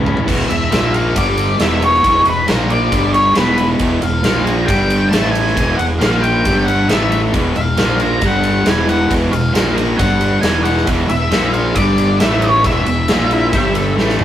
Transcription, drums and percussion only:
0.06 floor tom medium
0.17 floor tom medium
0.28 kick medium
0.28 crash loud
0.50 ride medium
0.72 snare medium
0.72 ride medium
0.94 ride medium
1.16 kick loud
1.16 ride medium
1.38 ride medium
1.60 snare loud
1.60 ride medium
1.82 ride medium
1.94 snare soft
2.04 kick medium
2.04 ride medium
2.25 ride medium
2.48 snare medium
2.48 ride medium
2.70 ride medium
2.92 kick loud
2.92 ride medium
3.14 ride medium
3.35 snare loud
3.35 ride medium
3.58 ride medium
3.79 kick medium
3.79 ride medium
4.02 ride medium
4.24 snare loud
4.24 ride medium
4.47 ride medium
4.68 kick loud
4.68 ride medium
4.90 ride medium
5.13 snare loud
5.13 ride loud
5.35 ride medium
5.47 snare soft
5.57 kick medium
5.57 ride medium
5.79 ride medium
6.01 snare loud
6.01 ride medium
6.24 ride medium
6.45 kick loud
6.45 ride medium
6.68 ride medium
6.89 snare loud
6.89 ride medium
7.12 ride medium
7.34 kick medium
7.34 ride medium
7.56 ride medium
7.77 snare medium
7.77 ride medium
8.00 ride medium
8.21 kick loud
8.21 ride medium
8.43 ride medium
8.66 snare loud
8.66 ride medium
8.89 ride medium
9.11 kick medium
9.11 ride medium
9.33 ride medium
9.55 snare loud
9.55 ride medium
9.78 ride medium
9.99 kick loud
9.99 ride medium
10.21 ride medium
10.43 snare loud
10.43 ride loud
10.65 ride medium
10.77 snare soft
10.87 kick medium
10.87 ride medium
11.09 ride medium
11.32 snare medium
11.32 ride medium
11.54 ride medium
11.76 kick loud
11.76 ride medium
11.98 ride medium
12.20 snare loud
12.20 ride medium
12.42 ride medium
12.64 kick loud
12.64 ride medium
12.86 ride medium
13.08 snare loud
13.08 ride medium
13.31 ride medium
13.53 kick loud
13.53 ride medium
13.75 ride medium
13.99 snare medium
14.10 snare medium
14.19 mid tom medium

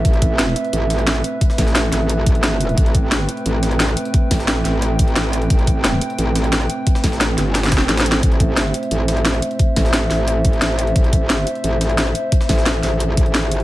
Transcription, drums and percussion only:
0.05 kick loud
0.05 closed hi-hat medium
0.13 closed hi-hat soft
0.22 kick loud
0.22 closed hi-hat medium
0.39 snare loud
0.39 closed hi-hat medium
0.56 closed hi-hat medium
0.65 closed hi-hat soft
0.73 closed hi-hat medium
0.90 snare soft
0.90 closed hi-hat medium
0.99 closed hi-hat soft
1.07 snare loud
1.07 closed hi-hat medium
1.16 closed hi-hat soft
1.24 closed hi-hat medium
1.41 kick loud
1.41 closed hi-hat medium
1.50 snare soft
1.58 kick medium
1.58 snare medium
1.58 closed hi-hat medium
1.58 open hi-hat medium
1.67 snare soft
1.75 snare loud
1.75 closed hi-hat medium
1.92 snare soft
1.92 closed hi-hat medium
2.09 closed hi-hat medium
2.26 kick loud
2.26 closed hi-hat medium
2.35 closed hi-hat soft
2.43 snare loud
2.43 closed hi-hat medium
2.61 closed hi-hat medium
2.69 closed hi-hat soft
2.78 kick loud
2.78 closed hi-hat medium
2.86 closed hi-hat soft
2.95 kick loud
2.95 closed hi-hat medium
3.12 snare loud
3.12 closed hi-hat medium
3.29 closed hi-hat medium
3.37 closed hi-hat soft
3.46 closed hi-hat medium
3.63 snare soft
3.63 closed hi-hat medium
3.71 closed hi-hat soft
3.80 snare loud
3.80 closed hi-hat medium
3.88 closed hi-hat soft
3.97 closed hi-hat loud
3.97 closed hi-hat medium
4.05 closed hi-hat soft
4.14 kick loud
4.14 closed hi-hat medium
4.31 kick medium
4.31 snare medium
4.31 closed hi-hat medium
4.31 open hi-hat medium
4.39 snare soft
4.48 snare loud
4.48 closed hi-hat medium
4.65 snare soft
4.65 closed hi-hat medium
4.82 closed hi-hat medium
4.99 kick loud
4.99 closed hi-hat medium
5.08 closed hi-hat soft
5.16 snare loud
5.16 closed hi-hat medium
5.33 closed hi-hat medium
5.33 closed hi-hat loud
5.42 closed hi-hat soft
5.50 kick loud
5.50 closed hi-hat medium
5.59 closed hi-hat soft
5.67 kick loud
5.67 closed hi-hat medium
5.67 closed hi-hat loud
5.84 snare loud
5.84 closed hi-hat medium
6.01 closed hi-hat medium
6.01 closed hi-hat loud
6.10 closed hi-hat soft
6.18 closed hi-hat medium
6.36 snare soft
6.36 closed hi-hat loud
6.36 closed hi-hat medium
6.44 closed hi-hat soft
6.52 snare loud
6.52 closed hi-hat medium
6.61 closed hi-hat soft
6.70 closed hi-hat loud
6.70 closed hi-hat medium
6.87 kick loud
6.87 closed hi-hat medium
6.95 snare soft
7.04 kick medium
7.04 snare medium
7.04 closed hi-hat loud
7.04 open hi-hat medium
7.12 snare soft
7.21 snare loud
7.21 closed hi-hat medium
7.38 snare soft
7.38 closed hi-hat loud
7.38 closed hi-hat medium
7.55 snare loud
7.55 snare medium
7.55 closed hi-hat medium
7.63 snare loud
7.63 closed hi-hat medium
7.66 snare medium
7.72 kick loud
7.72 snare loud
7.72 closed hi-hat loud
7.72 closed hi-hat medium
7.78 snare medium
7.78 closed hi-hat soft
7.89 snare medium
7.89 closed hi-hat medium
7.97 snare loud
7.97 closed hi-hat medium
8.00 snare loud
8.06 closed hi-hat loud
8.06 closed hi-hat soft
8.12 snare loud
8.12 closed hi-hat medium
8.23 kick loud
8.23 closed hi-hat medium
8.32 closed hi-hat soft
8.40 kick loud
8.40 closed hi-hat loud
8.40 closed hi-hat medium
8.57 snare loud
8.57 closed hi-hat medium
8.74 closed hi-hat loud
8.74 closed hi-hat medium
8.83 closed hi-hat soft
8.91 closed hi-hat medium
9.08 snare soft
9.08 closed hi-hat loud
9.08 closed hi-hat medium
9.17 closed hi-hat soft
9.25 snare loud
9.25 closed hi-hat medium
9.34 closed hi-hat soft
9.42 closed hi-hat loud
9.42 closed hi-hat medium
9.51 closed hi-hat soft
9.59 kick loud
9.59 closed hi-hat medium
9.76 kick medium
9.76 snare medium
9.76 closed hi-hat medium
9.76 open hi-hat medium
9.85 snare soft
9.93 snare loud
9.93 closed hi-hat medium
10.11 snare soft
10.11 closed hi-hat medium
10.11 open hi-hat medium
10.28 closed hi-hat medium
10.45 kick loud
10.45 closed hi-hat loud
10.45 closed hi-hat medium
10.53 closed hi-hat soft
10.62 snare loud
10.62 closed hi-hat medium
10.79 closed hi-hat loud
10.79 closed hi-hat medium
10.87 closed hi-hat soft
10.96 kick loud
10.96 closed hi-hat medium
11.04 closed hi-hat soft
11.13 kick loud
11.13 closed hi-hat medium
11.30 snare loud
11.30 closed hi-hat medium
11.47 closed hi-hat medium
11.55 closed hi-hat soft
11.64 closed hi-hat medium
11.81 snare soft
11.81 closed hi-hat medium
11.90 closed hi-hat soft
11.98 snare loud
11.98 closed hi-hat medium
12.07 closed hi-hat soft
12.15 closed hi-hat loud
12.15 closed hi-hat medium
12.32 kick loud
12.32 closed hi-hat medium
12.41 snare soft
12.49 kick medium
12.49 snare medium
12.49 closed hi-hat medium
12.49 open hi-hat medium
12.58 snare soft
12.66 snare loud
12.66 closed hi-hat medium
12.83 snare soft
12.83 closed hi-hat medium
12.83 open hi-hat medium
13.00 closed hi-hat medium
13.17 kick loud
13.17 closed hi-hat medium
13.26 closed hi-hat soft
13.34 snare loud
13.34 closed hi-hat medium
13.52 closed hi-hat medium
13.60 closed hi-hat soft

